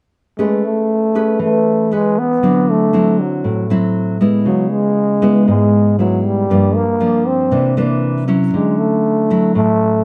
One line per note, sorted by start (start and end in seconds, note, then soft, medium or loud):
0.39 0.66 G#3 medium
0.39 1.38 A3 medium
0.39 1.10 C#4 medium
0.39 1.11 G#4 soft
0.39 1.11 B4 medium
0.65 1.40 A3 medium
1.15 1.87 C#4 medium
1.15 1.87 G#4 medium
1.15 1.87 B4 medium
1.39 2.39 E3 medium
1.39 1.95 A3 medium
1.91 2.20 G#3 medium
1.91 2.25 C#4 soft
1.91 2.25 G#4 soft
1.91 2.26 B4 medium
2.19 2.72 B3 medium
2.43 3.42 D3 medium
2.43 2.89 F#3 soft
2.43 2.89 C4 soft
2.43 2.89 E4 medium
2.70 3.23 A3 medium
2.93 3.65 F#3 medium
2.93 3.65 C4 medium
2.93 3.66 E4 medium
3.21 3.71 F#3 medium
3.44 4.43 A2 medium
3.70 4.17 F#3 medium
3.70 4.17 C4 medium
3.70 4.17 E4 medium
4.21 5.18 G#3 medium
4.21 5.19 B3 medium
4.21 5.19 E4 medium
4.46 5.45 C#3 medium
4.46 4.73 F#3 medium
4.71 5.48 G#3 medium
5.22 5.94 G#3 medium
5.22 5.94 B3 medium
5.22 5.95 E4 medium
5.48 6.47 G#2 medium
5.48 5.95 G#3 medium
5.99 6.27 F#3 medium
5.99 6.48 G#3 soft
5.99 6.48 B3 soft
5.99 6.48 E4 soft
6.25 6.77 G3 medium
6.50 7.49 G2 medium
6.50 6.83 F3 soft
6.50 6.83 A#3 medium
6.50 6.83 D4 medium
6.76 7.29 A#3 medium
7.00 7.50 F3 medium
7.00 7.50 A#3 medium
7.00 7.50 D4 medium
7.27 7.78 C4 medium
7.51 8.51 C3 medium
7.51 7.73 E3 medium
7.51 7.73 A#3 soft
7.51 7.73 D4 medium
7.77 8.24 E3 medium
7.77 8.24 A#3 medium
7.77 8.24 D4 medium
8.28 9.26 F#3 medium
8.28 9.26 C#4 medium
8.28 9.26 E4 medium
8.54 9.53 D3 medium
8.54 8.80 G#3 medium
8.79 9.55 A3 medium
9.30 10.03 F#3 medium
9.30 10.03 C#4 medium
9.30 10.03 E4 medium
9.55 10.04 A2 medium
9.55 10.04 A3 medium